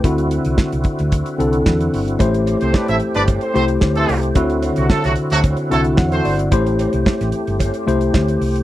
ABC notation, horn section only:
X:1
M:4/4
L:1/16
Q:1/4=111
K:Ador
V:1 name="Horn section"
z16 | z3 [A,CGc] [DBd] [CEAe] z [DBd] z [A,CGc] [A,CGc] z2 [E,A,CA]2 z | z3 [C,F,A,F] [F,A,EA] [C,F,A,F] z [C,F,A,F] z2 [F,A,EA] z2 [A,CFc]2 z | z16 |]